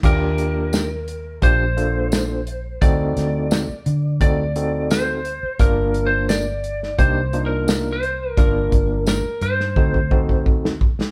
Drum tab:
CC |x---------------|----------------|----------------|----------------|
HH |x-x-x-x-x-x-x-x-|x-x-x-x-x-x-x-x-|x-x-x-x-x-x-x-x-|x-x-x-x---------|
TB |----x-------x---|----x-------x---|----x-------x---|----x-----------|
SD |----o-------o---|--o-o-------o---|----o--o----o---|----o--o-----o-o|
BD |o-------o-------|o-------o-------|o-------o-------|o-o-----ooooo-o-|